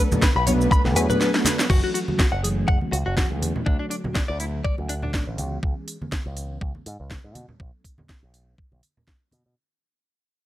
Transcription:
Already playing: B3 B4
0.11 F#3 A3 B3 D4 A4, high bongo, high conga, low conga, maracas, shaker
0.22 B4, kick, snare, shaker, maracas
0.35 B1 B5, maracas
0.47 F#3 A3 B3 D4 B4 C#5, open hi-hat, high bongo, low conga, shaker, maracas
0.61 maracas, shaker
0.71 B5, kick, high bongo, shaker, maracas
0.85 B1 F#3 A3 B3 D4 A4, snare, high conga, maracas
0.95 E2 F#3 A3 B3 D4 B4 C#5, open hi-hat, maracas, shaker
1.09 F#3 A3 B3 D4 G#4 B4, low conga, maracas, shaker
1.21 B4, snare, maracas, shaker
1.33 F#3 A3 B3 D4 B4, snare, maracas
1.45 snare, open hi-hat, high conga, maracas, shaker
1.59 snare, high bongo, maracas, shaker
1.69 F#1 E3 F#3 A3 C#4 F#4, kick, crash
1.84 F#4
1.94 F#4, open hi-hat
2.07 E3 F#3 A3 C#4 F#4, high conga
2.19 F#4, kick, snare
2.32 F#1 F#5
2.43 E3 F#3 A3 C#4 G#4, open hi-hat
2.68 F#1 F#5, kick
2.81 E3 F#3 A3 C#4 F#4, high conga
2.92 C#2 F#4, open hi-hat
3.06 F#1 F#4
3.17 E3 F#3 A3 C#4 F#4 G#4, kick, snare
3.31 C#2
3.41 E2 E3 F#3 A3 C#4 E4, open hi-hat, high conga
3.56 low conga
3.66 D2 D3 F#3 A3 D4 F#4 C#5, kick
3.79 D4
3.90 D4, open hi-hat
4.04 D3 F#3 A3 C#4 F#4, high conga, low conga
4.15 D4, kick, snare
4.28 D2 D5
4.39 D3 F#3 A3 E4 A4, open hi-hat
4.64 D5, kick
4.77 D2 D3 F#3 A3 C#4 F#4, high conga
4.89 D4, open hi-hat
5.02 D4, low conga
5.13 A1 D3 F#3 A3 C#4 D4 A4, kick, snare
5.27 A1
5.37 C#2 E3 G#3 B3 C#4 F#4, open hi-hat, high conga
5.62 C#2 E3 G#3 B3 C#4 G#4, kick
5.88 open hi-hat
6.00 E3 G#3 B3 C#4 G#4, high conga
6.12 kick, snare
6.26 C#2
6.36 E3 G#3 B3 C#4 B4, open hi-hat
6.61 C#2, kick
6.74 E3 G#3 B3 C#4 G#4, high conga
6.86 G#2, open hi-hat
7.00 C#2
7.10 E3 G#3 B3 C#4 B4, kick, snare
7.24 G#2
7.35 B2 E3 G#3 B3 C#4 F#4, open hi-hat, high conga
7.49 low conga
7.59 B1 F#3 A3 B3 D4 A4, kick
7.84 kick, open hi-hat
7.98 F#3 A3 B3 D4 A4, high conga, low conga
8.09 kick, snare
8.23 B1
8.33 F#3 A3 B3 D4 B4, open hi-hat
8.58 kick
8.72 B1 A3 B3 D4, high conga
8.83 open hi-hat
8.97 low conga
9.08 A3 B3 D4, kick, snare
9.31 B2 A3 B3 D4, open hi-hat, high conga
9.46 B2

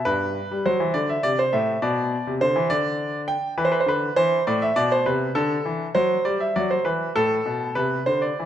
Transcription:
0.05 G2 B4
0.51 G3
0.66 F#3 C5
0.80 E3
0.94 D3 D5
1.09 E5
1.23 C3 D5
1.39 C5
1.53 A2 E5
1.82 B2 D5
2.27 C3
2.41 D3 C5
2.56 E3
2.70 D3 D5
3.28 G5
3.58 E3 B4
3.65 C5
3.72 B4
3.80 C5
3.86 D3 B4
4.16 E3 C5
4.47 A2 D5
4.62 E5
4.76 B2 D5
4.92 C5
5.06 C3 B4
5.35 D3 A4
5.66 E3
5.95 F#3 C5
6.25 G3 D5
6.40 E5
6.56 F#3 D5
6.71 C5
6.85 E3 B4
7.16 A2 A4
7.46 B2
7.75 C3 B4
8.06 D3 C5
8.22 D5
8.40 E3

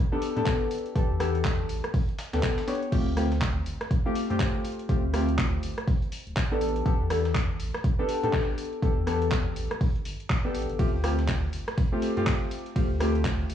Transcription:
0.12 B3 D4 G4 A4
0.22 closed hi-hat, open hi-hat
0.36 A2 B3 D4 G4 A4, closed hi-hat
0.46 kick, snare, clap, closed hi-hat
0.61 A1
0.71 closed hi-hat, open hi-hat
0.78 closed hi-hat
0.86 closed hi-hat
0.95 A1 B3 D4 G4 A4, kick, closed hi-hat
1.10 E2
1.19 B3 D4 G4 A4, cross-stick, closed hi-hat, open hi-hat
1.35 closed hi-hat
1.45 kick, snare, clap, closed hi-hat
1.69 A1, closed hi-hat, open hi-hat
1.84 cross-stick, closed hi-hat
1.94 kick, closed hi-hat, open hi-hat
2.09 closed hi-hat
2.19 snare, closed hi-hat, open hi-hat
2.33 D2 B3 D4 G4 A4, snare, closed hi-hat
2.43 kick, snare, clap, closed hi-hat
2.58 snare, closed hi-hat
2.67 B3 D4 G4 C#5, snare, closed hi-hat, open hi-hat
2.75 closed hi-hat
2.83 closed hi-hat
2.92 G1 A3 C4 F4 G4, kick, closed hi-hat, crash
3.07 D2
3.17 A3 C4 F4 G4, cross-stick, closed hi-hat, open hi-hat
3.32 snare, closed hi-hat
3.41 kick, snare, clap, closed hi-hat
3.66 G1, closed hi-hat, open hi-hat
3.81 cross-stick, snare, closed hi-hat
3.91 kick, closed hi-hat
4.05 A3 C4 F4 G4
4.15 closed hi-hat, open hi-hat
4.30 G2 A3 C4 F4 G4, closed hi-hat
4.40 kick, snare, clap, closed hi-hat
4.55 G1
4.64 closed hi-hat, open hi-hat
4.72 closed hi-hat
4.79 closed hi-hat
4.89 G1 A3 C4 F4 G4, kick, closed hi-hat
5.04 D2
5.13 A3 C4 F4 G4, cross-stick, closed hi-hat, open hi-hat
5.28 closed hi-hat
5.38 kick, snare, clap, closed hi-hat
5.63 G1, closed hi-hat, open hi-hat
5.78 cross-stick, closed hi-hat
5.87 kick, closed hi-hat, open hi-hat
6.02 closed hi-hat
6.12 closed hi-hat, open hi-hat
6.27 D1, closed hi-hat
6.37 kick, snare, clap, closed hi-hat
6.51 A1 B3 D4 G4 A4
6.61 closed hi-hat, open hi-hat
6.69 closed hi-hat
6.76 closed hi-hat
6.85 A1 B3 D4 G4 A4, kick, closed hi-hat
7.01 E2
7.10 B3 D4 G4 A4, cross-stick, closed hi-hat, open hi-hat
7.25 snare, closed hi-hat
7.35 kick, snare, clap, closed hi-hat
7.60 A1, closed hi-hat, open hi-hat
7.74 cross-stick, snare, closed hi-hat
7.84 kick, closed hi-hat
7.99 B3 D4 G4 A4
8.09 closed hi-hat, open hi-hat
8.23 A2 B3 D4 G4 A4, closed hi-hat
8.33 kick, snare, clap, closed hi-hat
8.48 A1
8.58 closed hi-hat, open hi-hat
8.65 closed hi-hat
8.73 closed hi-hat
8.82 A1 B3 D4 G4 A4, kick, closed hi-hat
8.97 E2
9.07 B3 D4 G4 A4, cross-stick, closed hi-hat, open hi-hat
9.22 closed hi-hat
9.32 kick, snare, clap, closed hi-hat
9.56 A1, closed hi-hat, open hi-hat
9.71 cross-stick, closed hi-hat
9.81 kick, closed hi-hat, open hi-hat
9.96 closed hi-hat
10.05 G1, closed hi-hat, open hi-hat
10.20 closed hi-hat
10.30 kick, snare, clap, closed hi-hat
10.45 B3 D4 G4 A4
10.55 A1, closed hi-hat, open hi-hat
10.62 closed hi-hat
10.69 G1, closed hi-hat
10.79 G1 A3 C4 F4 G4, kick, closed hi-hat, ride
10.94 D2
11.04 A3 C4 F4 G4, cross-stick, closed hi-hat, open hi-hat
11.19 snare, closed hi-hat
11.28 kick, snare, clap, closed hi-hat, ride
11.53 G1, closed hi-hat, open hi-hat
11.68 cross-stick, snare, closed hi-hat
11.78 kick, closed hi-hat, ride
11.92 A3 C4 F4 G4
12.02 closed hi-hat, open hi-hat
12.16 G2 A3 C4 F4 G4, closed hi-hat
12.27 kick, snare, clap, closed hi-hat, ride
12.41 G1
12.51 closed hi-hat, open hi-hat
12.59 closed hi-hat
12.66 closed hi-hat
12.76 G1 A3 C4 F4 G4, kick, closed hi-hat, ride
12.91 D2
13.00 A3 C4 F4 G4, cross-stick, closed hi-hat, open hi-hat
13.15 closed hi-hat
13.25 kick, snare, clap, closed hi-hat, ride
13.50 G1, closed hi-hat, open hi-hat

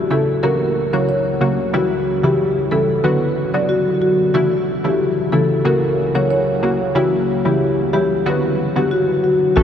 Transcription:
Already playing: C#3 E3 A3 E4
0.10 C#3 E3 A3 E4 A4
0.43 C#3 F#3 A#3 F#4 A#4
0.93 C#3 F#3 A#3 F#4 C#5
1.09 C#5
1.41 C#3 F#3 A#3 F#4
1.73 C#3 E3 G3 E4 F#4
2.23 C#3 E3 G3 E4 G4
2.71 C#3 E3 G3 E4 A4
3.04 D3 F#3 B3 F#4 B4
3.54 D3 F#3 B3 F#4 D5
3.69 F#4
4.02 F#4
4.34 C#3 E3 A3 E4 F#4
4.84 C#3 E3 A3 E4 G4
5.32 C#3 E3 A3 E4 A4
5.65 C#3 F#3 A#3 F#4 A#4
6.15 C#3 F#3 A#3 F#4 C#5
6.30 C#5
6.63 C#3 F#3 A#3 F#4
6.95 C#3 E3 G3 E4 F#4
7.45 C#3 E3 G3 E4 G4
7.93 C#3 E3 G3 E4 G4
8.26 D3 F#3 B3 F#4 B4
8.76 D3 F#3 B3 F#4 G4
8.91 F#4
9.24 F#4
9.56 A1 E3 A3 C#4 F#4 A4

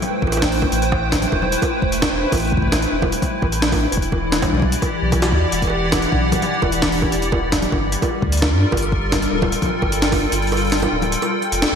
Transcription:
Already playing: A3 E4 B4 G5
0.01 C5, closed hi-hat, low conga
0.22 A1, kick, high bongo
0.27 high bongo
0.32 closed hi-hat, high bongo
0.37 high bongo
0.42 kick, snare, closed hi-hat
0.52 open hi-hat
0.62 kick, high bongo
0.72 A1, closed hi-hat
0.82 closed hi-hat
0.92 kick, high bongo
1.12 kick, snare, closed hi-hat
1.22 closed hi-hat, low conga
1.32 E1, kick, high bongo
1.42 low conga
1.52 closed hi-hat
1.62 kick, closed hi-hat, high bongo
1.82 E1, kick
1.92 closed hi-hat
2.02 kick, snare, closed hi-hat, high bongo
2.12 E1
2.32 A1, kick, closed hi-hat, high bongo
2.35 closed hi-hat
2.37 closed hi-hat
2.40 closed hi-hat
2.42 closed hi-hat
2.45 closed hi-hat
2.47 closed hi-hat
2.50 kick, closed hi-hat
2.57 kick
2.62 kick
2.67 kick
2.72 kick, snare, closed hi-hat, high bongo
2.82 closed hi-hat
2.92 E1
3.02 kick, high bongo, low conga
3.12 closed hi-hat
3.22 kick, closed hi-hat, low conga
3.42 A1, kick, high bongo
3.52 closed hi-hat
3.62 snare, closed hi-hat
3.72 kick, open hi-hat, high bongo
3.92 E1 E3, closed hi-hat
3.97 kick
4.02 closed hi-hat
4.08 D5
4.12 kick, high bongo
4.32 snare, closed hi-hat
4.42 kick, closed hi-hat, high bongo, low conga
4.45 low conga
4.47 low conga
4.50 low conga
4.52 B1, low conga
4.55 G4, low conga
4.57 low conga
4.60 low conga
4.62 kick, low conga
4.72 closed hi-hat
4.82 kick, closed hi-hat, high bongo
5.02 B1
5.12 kick, closed hi-hat, high bongo
5.22 snare, closed hi-hat
5.26 F#5
5.32 E2, kick
5.52 E1, closed hi-hat
5.62 kick, closed hi-hat, high bongo
5.65 high bongo
5.67 high bongo
5.70 high bongo
5.92 kick, snare, closed hi-hat, high bongo
6.02 closed hi-hat
6.12 B1, kick
6.32 kick, closed hi-hat, high bongo, low conga
6.42 closed hi-hat, low conga
6.62 E1, kick, high bongo
6.72 closed hi-hat
6.82 kick, snare, closed hi-hat
6.92 open hi-hat
7.02 kick, high bongo
7.12 E1, closed hi-hat
7.22 closed hi-hat
7.32 kick, high bongo
7.52 kick, snare, closed hi-hat
7.62 closed hi-hat, low conga
7.72 G1, kick, high bongo
7.92 G3, closed hi-hat
8.02 kick, closed hi-hat, high bongo
8.16 F4
8.22 D2 A#4, kick
8.32 closed hi-hat
8.37 closed hi-hat
8.42 kick, snare, high bongo
8.50 G2 A4
8.72 G1, kick, high bongo
8.77 closed hi-hat
8.82 closed hi-hat
8.92 kick
9.12 kick, snare, closed hi-hat, high bongo
9.22 closed hi-hat
9.32 D1
9.42 kick, high bongo, low conga
9.48 G5
9.52 closed hi-hat
9.62 kick, closed hi-hat, low conga
9.66 low conga
9.69 low conga
9.82 G1, kick, high bongo
9.92 closed hi-hat
10.02 snare, closed hi-hat
10.12 kick, open hi-hat, high bongo
10.32 G1, closed hi-hat
10.42 open hi-hat
10.47 open hi-hat
10.52 open hi-hat, high bongo
10.57 open hi-hat
10.62 closed hi-hat
10.65 closed hi-hat
10.67 closed hi-hat
10.70 snare, closed hi-hat
10.72 closed hi-hat
10.75 closed hi-hat
10.77 closed hi-hat
10.80 closed hi-hat
10.82 closed hi-hat, high bongo, low conga
10.92 D1
11.02 closed hi-hat, low conga
11.12 closed hi-hat
11.22 closed hi-hat, high bongo
11.42 closed hi-hat
11.52 F1, closed hi-hat
11.62 snare, closed hi-hat

